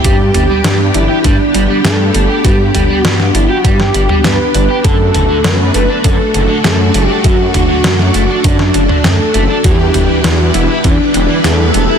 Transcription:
Already playing: string machine G4
0.04 detuned saw bass G2, overdriven electric guitar G3, string machine B3 D4, analog synth lead G4, kick, closed hi-hat
0.34 detuned saw bass G1, overdriven electric guitar G3, closed hi-hat, mid tom
0.50 overdriven electric guitar G3
0.64 detuned saw bass G2, overdriven electric guitar G3, snare, closed hi-hat
0.94 detuned saw bass G1, overdriven electric guitar D4, analog synth lead E4, closed hi-hat
1.09 overdriven electric guitar G4
1.24 detuned saw bass G2, overdriven electric guitar G3, analog synth lead D4, kick, closed hi-hat
1.54 detuned saw bass G1, overdriven electric guitar G3, closed hi-hat
1.69 overdriven electric guitar G3
1.84 detuned saw bass G2, overdriven electric guitar G3, analog synth lead A4, snare, closed hi-hat
2.14 detuned saw bass G1, overdriven electric guitar D4, closed hi-hat
2.30 overdriven electric guitar G4
2.44 detuned saw bass G2, overdriven electric guitar G3, analog synth lead G4, kick, closed hi-hat
2.75 detuned saw bass G1, overdriven electric guitar G3, closed hi-hat, mid tom
2.90 overdriven electric guitar G3
3.02 detuned saw bass G2, overdriven electric guitar G3, analog synth lead F#4, snare, closed hi-hat
3.20 snare
3.35 detuned saw bass G1, overdriven electric guitar D4, analog synth lead E4, closed hi-hat
3.49 analog synth lead F#4, overdriven electric guitar G4
3.64 detuned saw bass G2, overdriven electric guitar G3, analog synth lead G4, kick, closed hi-hat
3.80 snare
3.94 detuned saw bass G1, overdriven electric guitar G3, closed hi-hat
4.09 overdriven electric guitar G3, mid tom
4.24 detuned saw bass G2, overdriven electric guitar G3, analog synth lead B4, snare, closed hi-hat
4.54 detuned saw bass G1, overdriven electric guitar D4, closed hi-hat
4.70 overdriven electric guitar G4
4.84 detuned saw bass F#2, overdriven electric guitar D3, string machine A3 F#4, analog synth lead A4, kick, closed hi-hat
5.14 detuned saw bass F#1, overdriven electric guitar D3, closed hi-hat, mid tom
5.30 overdriven electric guitar D3
5.44 detuned saw bass F#2, overdriven electric guitar D3, analog synth lead B4, snare, closed hi-hat
5.74 detuned saw bass F#1, overdriven electric guitar A3, closed hi-hat
5.89 overdriven electric guitar D4
6.04 detuned saw bass F#2, overdriven electric guitar D3, analog synth lead A4, kick, closed hi-hat
6.34 detuned saw bass F#1, overdriven electric guitar D3, closed hi-hat
6.49 overdriven electric guitar D3
6.64 detuned saw bass F#2, overdriven electric guitar D3, analog synth lead A4, snare, closed hi-hat
6.94 detuned saw bass F#1, overdriven electric guitar A3, closed hi-hat
7.07 overdriven electric guitar D4, analog synth lead G4
7.24 detuned saw bass F#2, overdriven electric guitar D3, analog synth lead F#4, kick, closed hi-hat
7.54 detuned saw bass F#1, overdriven electric guitar D3, closed hi-hat, mid tom
7.69 overdriven electric guitar D3
7.84 detuned saw bass F#2, overdriven electric guitar D3, snare, closed hi-hat
7.99 snare
8.14 detuned saw bass F#1, overdriven electric guitar A3, closed hi-hat
8.29 overdriven electric guitar D4
8.44 detuned saw bass F#2, overdriven electric guitar D3, analog synth lead D4, kick, closed hi-hat
8.59 snare
8.74 detuned saw bass F#1, overdriven electric guitar D3, closed hi-hat
8.89 overdriven electric guitar D3, mid tom
9.04 detuned saw bass F#2, overdriven electric guitar D3, analog synth lead A4, snare, closed hi-hat
9.34 detuned saw bass F#1, overdriven electric guitar A3, closed hi-hat
9.50 overdriven electric guitar D4
9.64 detuned saw bass E2, overdriven electric guitar E3, string machine G3 B3 E4 B4, analog synth lead G4, kick, closed hi-hat
9.94 detuned saw bass E1, overdriven electric guitar E3, closed hi-hat, mid tom
10.09 overdriven electric guitar E3
10.23 detuned saw bass E2, overdriven electric guitar E3, analog synth lead F#4, snare, closed hi-hat
10.54 detuned saw bass E1, overdriven electric guitar B3, analog synth lead E4, closed hi-hat
10.70 overdriven electric guitar E4
10.84 detuned saw bass E2, overdriven electric guitar E3, analog synth lead D4, kick, closed hi-hat
11.14 detuned saw bass E1, overdriven electric guitar E3, closed hi-hat
11.29 overdriven electric guitar E3
11.44 detuned saw bass E2, overdriven electric guitar E3, analog synth lead A4, snare, closed hi-hat
11.74 detuned saw bass E1, overdriven electric guitar B3, closed hi-hat
11.89 overdriven electric guitar E4

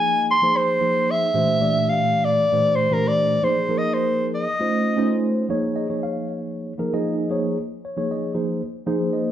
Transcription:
Already playing: tine electric piano F3 A#3 D#4 G#4 D#5, soprano saxophone G#5
0.31 soprano saxophone C6
0.42 tine electric piano F3 A#3 D#4 G#4 C5
0.57 soprano saxophone C5
0.81 tine electric piano F3 A#3 D#4 G#4 C5
1.11 soprano saxophone E5
1.34 tine electric piano A#2 E3 A3 D4 G4 C5
1.60 tine electric piano A#2 E3 A3 D4 G4 D5
1.89 soprano saxophone F5
2.25 soprano saxophone D5
2.52 tine electric piano A#2 E3 A3 D4 G4 C5
2.75 soprano saxophone C5
2.90 tine electric piano A#2 E3 A3 D4 G4 C5, soprano saxophone A#4
3.08 soprano saxophone D5
3.42 tine electric piano F3 A#3 D#4 G#4 C5, soprano saxophone C5
3.68 tine electric piano F3 A#3 D#4 G#4 A#4
3.78 soprano saxophone D#5
3.94 soprano saxophone C5
4.35 soprano saxophone D#5
4.60 tine electric piano A3 C#4 D#4 F4 C5
4.96 tine electric piano A3 C#4 D#4 F4 C5
5.49 tine electric piano F3 A#3 D#4 G#4 C#5
5.76 tine electric piano D#5
5.89 tine electric piano F3 A#3 D#4 G#4 C#5
6.03 tine electric piano F5
6.78 tine electric piano F3 A#3 D#4 G#4 A#4
6.93 tine electric piano F3 A#3 D#4 G#4 D#5
7.30 tine electric piano F3 A#3 D#4 G#4 C#5
7.85 tine electric piano C#5
7.97 tine electric piano F3 A#3 D#4 G#4 C#5
8.11 tine electric piano D#5
8.34 tine electric piano F3 A#3 D#4 G#4 C5
8.86 tine electric piano F3 A#3 D#4 G#4 C5
9.13 tine electric piano D#5

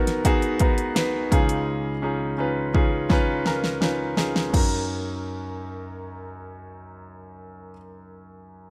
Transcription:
Already playing: grand piano B1 B2 B3 D#4 F#4 A#4 B4
0.07 snare, closed hi-hat
0.25 grand piano B3 D#4 F#4 G#4, kick, closed hi-hat
0.42 closed hi-hat
0.59 grand piano B3 D#4 F#4 B4, kick, closed hi-hat
0.78 closed hi-hat
0.95 grand piano B3 D#4 F#4 B4, snare, closed hi-hat
1.31 grand piano C#2 C#3 C#4 D#4 F4 G#4, kick, closed hi-hat
1.49 closed hi-hat
2.02 grand piano C#4 D#4 F4 G#4
2.38 grand piano C#4 D#4 F4 B4
2.74 grand piano C#4 D#4 F4 G#4, kick
3.09 grand piano C#4 D#4 F4 B4, kick, snare
3.45 grand piano C#4 D#4 F4 A#4, snare
3.64 snare
3.81 grand piano C#4 D#4 F4 B4, snare
4.17 grand piano C#4 D#4 F4 G#4, snare
4.36 snare
4.50 grand piano F#2 C#4 D#4, kick
4.54 grand piano F#4 A#4, crash

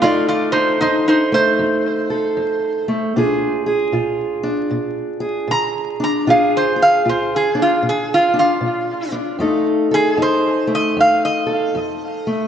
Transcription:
0.02 steel-string acoustic guitar F2 A3 D#4 A4, resonator guitar played with a steel bar F4 D5
0.29 resonator guitar played with a steel bar F4 D5
0.52 resonator guitar played with a steel bar D#4 C5, steel-string acoustic guitar A4
0.80 steel-string acoustic guitar F2 D#4, resonator guitar played with a steel bar D#4 C5
1.08 resonator guitar played with a steel bar D#4 C5
1.32 steel-string acoustic guitar A3, resonator guitar played with a steel bar C5
1.59 steel-string acoustic guitar F2
2.10 steel-string acoustic guitar A4
2.37 steel-string acoustic guitar F2
2.88 steel-string acoustic guitar A3
3.16 steel-string acoustic guitar A#2 D4 F4 G#4
3.66 steel-string acoustic guitar G#4
3.92 steel-string acoustic guitar A#2 F4
4.43 steel-string acoustic guitar D4
4.71 steel-string acoustic guitar A#2
5.20 steel-string acoustic guitar G#4
5.48 steel-string acoustic guitar A#2, resonator guitar played with a steel bar A#5
6.00 steel-string acoustic guitar D4, resonator guitar played with a steel bar A#5
6.27 steel-string acoustic guitar A#2 D4 F4 G#4, resonator guitar played with a steel bar F5
6.57 resonator guitar played with a steel bar C5
6.76 steel-string acoustic guitar G#4
6.82 resonator guitar played with a steel bar F5
7.05 steel-string acoustic guitar A#2 F4
7.09 resonator guitar played with a steel bar C5
7.36 resonator guitar played with a steel bar G#4
7.55 steel-string acoustic guitar D4
7.62 resonator guitar played with a steel bar F4
7.82 steel-string acoustic guitar A#2
7.89 resonator guitar played with a steel bar G#4
8.14 resonator guitar played with a steel bar F4
8.34 steel-string acoustic guitar D4
8.39 resonator guitar played with a steel bar F4
8.61 steel-string acoustic guitar A#2
9.12 steel-string acoustic guitar D4
9.39 steel-string acoustic guitar F2 A3 D#4 A4
9.91 resonator guitar played with a steel bar G#4, steel-string acoustic guitar A4
10.17 steel-string acoustic guitar F2 D#4
10.22 resonator guitar played with a steel bar C5
10.67 steel-string acoustic guitar A3
10.75 resonator guitar played with a steel bar D#5
10.97 steel-string acoustic guitar F2, resonator guitar played with a steel bar F5
11.25 resonator guitar played with a steel bar D#5
11.47 steel-string acoustic guitar A4
11.75 steel-string acoustic guitar F2
12.27 steel-string acoustic guitar A3

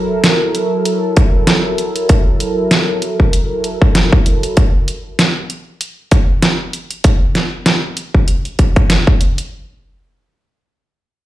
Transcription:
Already playing: analog synth pad F#3 E4 A4 A#4
0.24 snare, closed hi-hat
0.55 closed hi-hat
0.85 closed hi-hat
1.17 kick, closed hi-hat
1.47 snare, closed hi-hat
1.78 closed hi-hat
1.96 closed hi-hat
2.09 kick, closed hi-hat
2.40 closed hi-hat
2.71 snare, closed hi-hat
3.02 closed hi-hat
3.20 kick
3.33 closed hi-hat
3.64 closed hi-hat
3.82 kick
3.95 snare, closed hi-hat
4.13 kick
4.26 closed hi-hat
4.43 closed hi-hat
4.57 kick, closed hi-hat
4.88 closed hi-hat
5.19 snare, closed hi-hat
5.50 closed hi-hat
5.81 closed hi-hat
6.11 kick, closed hi-hat
6.42 snare, closed hi-hat
6.73 closed hi-hat
6.91 closed hi-hat
7.04 kick, closed hi-hat
7.35 snare, closed hi-hat
7.66 snare, closed hi-hat
7.97 closed hi-hat
8.15 kick
8.28 closed hi-hat
8.45 closed hi-hat
8.59 kick, closed hi-hat
8.76 kick, closed hi-hat
8.90 snare, closed hi-hat
9.07 kick
9.21 closed hi-hat
9.38 closed hi-hat

